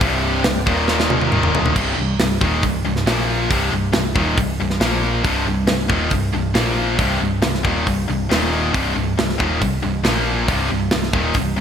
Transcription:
0.00 C1 C2 G2 C3 C4 G4 D5, kick, open hi-hat
0.44 C1 C2 G2, snare, open hi-hat
0.66 D#1 D#2 A#2 D#3 A#3 D#4 A#4, kick
0.88 snare
1.00 snare
1.10 high tom
1.21 high tom
1.31 D#1 D#2 A#2 D#3, mid tom
1.43 mid tom
1.55 floor tom
1.66 floor tom
1.76 C1 C2 G2 C3, kick, crash
1.98 C1 C2 G2
2.20 C1 C2 G2, snare, open hi-hat
2.41 D#1 D#2 A#2 D#3, kick
2.63 C1 C2 G2, kick, open hi-hat
2.85 C1 C2 G2
2.96 snare
3.06 A#1 A#2 F3 A#3, snare, open hi-hat
3.50 C1 C2 G2 C3, kick, open hi-hat
3.71 C1 C2 G2
3.92 C1 C2 G2, snare, open hi-hat
4.15 D#1 D#2 A#2 D#3, kick
4.37 C1 C2 G2, kick, open hi-hat
4.60 C1 C2 G2
4.70 snare
4.80 A#1 A#2 F3 A#3, snare, open hi-hat
5.24 C1 C2 G2 C3, kick, open hi-hat
5.46 C1 C2 G2
5.67 C1 C2 G2, snare, open hi-hat
5.88 D#1 D#2 A#2 D#3, kick
6.10 C1 C2 G2, kick, open hi-hat
6.33 C1 C2 G2
6.54 A#1 A#2 F3 A#3, snare, open hi-hat
6.97 C1 C2 G2 C3, kick, open hi-hat
7.20 C1 C2 G2
7.42 C1 C2 G2, snare, open hi-hat
7.54 snare
7.63 D#1 D#2 A#2 D#3, kick
7.86 C1 C2 G2, kick, open hi-hat
8.08 C1 C2 G2
8.29 D#1 D#2 A#2 D#3, snare, open hi-hat
8.72 C1 C2 G2 C3, kick, open hi-hat
8.95 C1 C2 G2
9.17 C1 C2 G2, snare, open hi-hat
9.29 snare
9.38 D#1 D#2 A#2 D#3, kick
9.60 C1 C2 G2, kick, open hi-hat
9.82 C1 C2 G2
10.03 A#1 A#2 F3 A#3, snare, open hi-hat
10.47 C1 C2 G2 C3, kick, open hi-hat
10.69 C1 C2 G2
10.91 C1 C2 G2, snare, open hi-hat
11.03 snare
11.13 D#1 D#2 A#2 D#3, kick
11.34 C1 C2 G2, kick, open hi-hat
11.56 C1 C2 G2

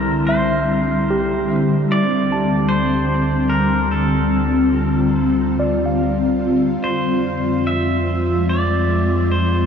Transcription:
Already playing: C2 D3 G3 C4 E4 A#4 A5
0.27 C5 E5
1.10 G4
1.90 D2 D5
2.32 A5
2.69 C5
3.50 A#4
3.60 F4
3.91 A4
5.60 D5
5.86 F5
6.82 F2 F3 C5
7.26 G#3
7.67 E5
8.49 D5
9.32 C5

